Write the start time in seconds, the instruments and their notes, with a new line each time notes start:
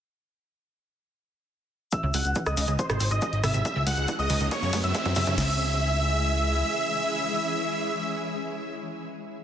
1.92 ambient pad G#3 G#4, supersaw synth E5, grand piano E6, kick, closed hi-hat, riser, cabasa
2.03 analog synth bass C#2, synth arpeggio sound C#3
2.14 analog synth bass C#2, synth arpeggio sound G#3, supersaw synth F#5, grand piano F#6, open hi-hat, cabasa
2.25 analog synth bass C#2, closed hi-hat, cabasa
2.35 synth arpeggio sound E3, kick, closed hi-hat, cabasa
2.46 analog synth bass C#2, supersaw synth D#5, grand piano D#6, cross-stick, cabasa
2.57 analog synth bass C#2, synth arpeggio sound C#3, open hi-hat, cabasa
2.68 analog synth bass C#2, synth arpeggio sound C#3, closed hi-hat, cabasa
2.79 ambient pad D#4, supersaw synth C5, grand piano C6, kick, closed hi-hat, cabasa
2.90 analog synth bass G#1, synth arpeggio sound C3, cross-stick, cabasa
3.00 analog synth bass G#1, synth arpeggio sound C4, open hi-hat, cabasa
3.11 analog synth bass G#1, supersaw synth D#5, grand piano D#6, closed hi-hat, cabasa
3.21 synth arpeggio sound G#3, kick, closed hi-hat, cabasa
3.33 analog synth bass G#1, closed hi-hat
3.43 analog synth bass G#1, synth arpeggio sound C3, supersaw synth E5, grand piano E6, cross-stick, open hi-hat, cabasa
3.54 analog synth bass G#1, synth arpeggio sound C3, closed hi-hat, cabasa
3.65 ambient pad G#4, supersaw synth E5, grand piano E6, kick, closed hi-hat, cabasa
3.76 analog synth bass C#2, synth arpeggio sound C#3
3.87 analog synth bass C#2, synth arpeggio sound G#3, supersaw synth F#5, grand piano F#6, open hi-hat, cabasa
3.97 analog synth bass C#2, closed hi-hat, cabasa
4.08 synth arpeggio sound E3, kick, closed hi-hat, cabasa
4.19 analog synth bass C#2, supersaw synth D#5, grand piano D#6, cabasa
4.30 analog synth bass C#2, synth arpeggio sound C#3, open hi-hat, cabasa
4.40 analog synth bass C#2, synth arpeggio sound C#3, closed hi-hat, cabasa
4.51 supersaw synth C#5, grand piano C#6, kick, closed hi-hat, cabasa
4.62 analog synth bass F#2, synth arpeggio sound C#3, cabasa
4.73 analog synth bass F#2, synth arpeggio sound A3, kick, open hi-hat, cabasa
4.84 analog synth bass F#2, supersaw synth E5, grand piano E6, closed hi-hat, cabasa
4.95 synth arpeggio sound G#3, kick, closed hi-hat, cabasa
5.05 analog synth bass F#2, kick, closed hi-hat
5.15 analog synth bass F#2, synth arpeggio sound C#3, supersaw synth E5, grand piano E6, kick, open hi-hat, cabasa
5.27 analog synth bass F#2, synth arpeggio sound C#3, kick, closed hi-hat, cabasa
5.38 analog synth bass C#2, synth arpeggio sound C#3, ambient pad E3 G#3 C#4 E4 G#4, supersaw synth E5, grand piano E6, snare, crash